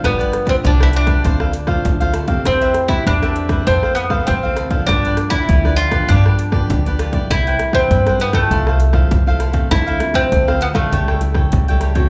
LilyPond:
<<
  \new Staff \with { instrumentName = "Cavaquinho" } { \time 4/4 \key c \major \tempo 4 = 99 <f' g' b' d''>16 <g' b' d''>16 r16 <g' b' d''>16 <f' g' b' d''>16 <g' b' d''>8 <g' b' d''>16 <d' a' c'' f''>16 <a' c'' f''>16 r16 <a' c'' f''>8 <a' c'' f''>16 <d' a' c'' f''>16 <a' c'' f''>16 | <e' b' c'' e''>16 <b' c'' e''>16 r16 <b' c'' e''>16 <e' b' c'' e''>16 <b' c'' e''>8 <b' c'' e''>16 <e' a' c'' f''>16 <a' c'' f''>16 r16 <a' c'' f''>8 <a' c'' f''>16 <e' a' c'' f''>16 <a' c'' f''>16 | <f' g' b' d''>16 <g' b' d''>16 r16 <g' b' d''>16 <f' g' b' d''>16 <g' b' d''>8 <g' b' d''>16 <f' g' b' d''>16 <g' b' d''>16 r16 <g' b' d''>8 <g' b' d''>16 <f' g' b' d''>16 <g' b' d''>16 | <e' b' c'' g''>16 <b' c'' g''>16 r16 <b' c'' g''>16 <e' b' c'' g''>16 <b' c'' g''>8 <b' c'' g''>16 <e' a' c'' f''>16 <a' c'' f''>16 r16 <a' c'' f''>8 <a' c'' f''>16 <e' a' c'' f''>16 <a' c'' f''>16 |
<d' a' c'' f''>16 <a' c'' f''>16 r16 <a' c'' f''>16 <d' a' c'' f''>16 <a' c'' f''>8 <a' c'' f''>16 <g' a' cis'' g''>16 <a' cis'' g''>16 r16 <a' cis'' g''>8 <a' cis'' g''>16 <g' a' cis'' g''>16 <a' cis'' g''>16 | }
  \new Staff \with { instrumentName = "Mandolin" } { \time 4/4 \key c \major b8. c'16 d'16 e'16 d'2 r8 | c'8. e'16 d'4 c'8 b8 c'8. r16 | d'8. e'8. f'8 d'4. r8 | e'8. c'8. b16 a4 r4 r16 |
e'8. c'8. b16 a4 r4 r16 | }
  \new Staff \with { instrumentName = "Nylon-string guitar" } { \time 4/4 \key c \major << { <f b d'>8. <f b d'>8 <f b d'>8. <a c' f'>8 r16 <a c' f'>8 <a c' f'>8 <c' g'>16~ | <c' g'>8. <b c' g'>8 <b c' g'>8 <e a c'>4 <e a c'>8 <e a c'>8 <f b d'>16~ | <f b d'>8. <f b d'>8 <f b d'>8 <f b d'>16 <f b d'>8. <f b d'>8 <f b d'>8 <g b e'>16~ | <g b e'>8. <g b e'>8 <g b e'>8 <f a e'>4 <f a e'>8 <f a e'>8 <a c'>16~ |
<a c'>8 <a c' f'>8 r16 <a c' f'>8 <g a e'>8. <g a e'>8. <g a e'>8 <a c' fis'>16 | } \\ { g,4 d4 d4 a,4 | e4 e4 f,4 c4 | g,4 d4 g,4 d4 | c4 g,4 c4 c4 |
d4 a,4 cis4 cis4 | } >> }
  \new Staff \with { instrumentName = "Upright bass" } { \clef bass \time 4/4 \key c \major g,,8 r8 c,4 d,4 d,4 | e,8 r8 e,4 f,4 d,4 | g,8 r8 d,4 g,4 d,4 | c,8 r8 g,4 c,4 c,4 |
d,8 r8 d,4 cis,4 cis,4 | }
  \new DrumStaff \with { instrumentName = "Drums" } \drummode { \time 4/4 <hh bd ss>16 hh16 <hh ss>16 <hh bd>16 <hh bd>16 ss16 hh16 <hh bd ss>16 <hh bd>16 ss16 hh16 <bd ss>16 <hh bd>16 hh16 <hh ss>16 <hh bd>16 | <hh bd ss>16 hh16 <hh ss>16 bd16 <hh bd>16 <hh ss>16 hh16 <hh bd ss>16 <hh bd>16 ss16 hh16 <bd ss>16 <hh bd>8 <hh ss>16 <hh bd>16 | <hh bd ss>16 hh16 <hh ss>16 <hh bd>16 <hh bd>16 ss16 hh16 <hh bd ss>16 <hh bd>16 ss16 hh16 <bd ss>16 <hh bd>16 hh16 <hh ss>16 <hh bd>16 | <hh bd ss>16 hh16 <hh ss>16 bd16 <hh bd>16 <hh ss>16 hh16 <hh bd ss>16 <hh bd>16 ss16 hh16 <bd ss>16 <hh bd>8 <hh ss>16 <hh bd>16 |
<hh bd ss>16 hh16 <hh ss>16 <hh bd>16 <hh bd>16 ss16 hh16 <hh bd ss>16 <hh bd>16 ss16 hh16 <bd ss>16 <hh bd>16 hh16 <hh ss>16 <hh bd>16 | }
>>